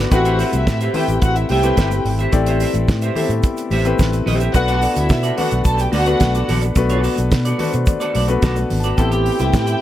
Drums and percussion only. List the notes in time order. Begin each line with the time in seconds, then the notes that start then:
0.12 kick, closed hi-hat, shaker
0.25 closed hi-hat, shaker
0.39 open hi-hat, muted conga, shaker
0.52 closed hi-hat, high conga, shaker
0.67 kick, snare, closed hi-hat, shaker
0.81 closed hi-hat, shaker
0.94 open hi-hat, low conga
1.08 closed hi-hat, shaker
1.22 kick, closed hi-hat, muted conga, shaker
1.36 closed hi-hat, shaker
1.49 open hi-hat, muted conga, high conga
1.63 closed hi-hat, shaker
1.76 kick, snare, closed hi-hat, high conga, shaker
1.91 closed hi-hat, high conga, shaker
2.05 open hi-hat, low conga
2.19 closed hi-hat, shaker
2.33 kick, closed hi-hat, muted conga, shaker
2.46 closed hi-hat, shaker
2.60 open hi-hat, shaker
2.73 closed hi-hat, high conga, shaker
2.88 kick, snare, closed hi-hat, muted conga, shaker
3.02 closed hi-hat, shaker
3.15 open hi-hat, low conga
3.30 closed hi-hat, shaker
3.43 kick, closed hi-hat, shaker
3.57 closed hi-hat, shaker
3.70 open hi-hat, muted conga, high conga
3.85 closed hi-hat, shaker
3.97 kick, snare, closed hi-hat, high conga, shaker
4.13 closed hi-hat, high conga, shaker
4.27 open hi-hat, muted conga, low conga
4.40 closed hi-hat, shaker
4.54 kick, closed hi-hat, muted conga, shaker
4.68 closed hi-hat, shaker
4.82 open hi-hat, muted conga, shaker
4.96 closed hi-hat, high conga, shaker
5.09 kick, snare, closed hi-hat, shaker
5.23 closed hi-hat, shaker
5.38 open hi-hat, low conga
5.51 closed hi-hat, shaker
5.65 kick, closed hi-hat, muted conga, shaker
5.78 closed hi-hat, shaker
5.93 open hi-hat, muted conga, high conga
6.06 closed hi-hat, shaker
6.19 kick, snare, closed hi-hat, muted conga, high conga, shaker
6.35 closed hi-hat, high conga, shaker
6.48 open hi-hat, muted conga, low conga
6.62 closed hi-hat, shaker
6.75 kick, closed hi-hat, shaker
6.89 closed hi-hat, shaker
7.03 open hi-hat, muted conga, shaker
7.16 closed hi-hat, high conga, shaker
7.31 kick, snare, closed hi-hat, muted conga, shaker
7.45 closed hi-hat, shaker
7.59 open hi-hat, muted conga, low conga
7.73 closed hi-hat, shaker
7.86 kick, closed hi-hat, muted conga, high conga, low conga, shaker
8.00 closed hi-hat, shaker
8.15 open hi-hat, high conga
8.28 closed hi-hat, shaker
8.42 kick, snare, closed hi-hat, high conga, shaker
8.56 closed hi-hat, high conga, shaker
8.70 open hi-hat, muted conga, low conga
8.84 closed hi-hat, shaker
8.98 kick, closed hi-hat, muted conga, shaker
9.12 closed hi-hat, shaker
9.26 open hi-hat
9.39 closed hi-hat, high conga, shaker
9.53 kick, snare, closed hi-hat, shaker
9.67 closed hi-hat, shaker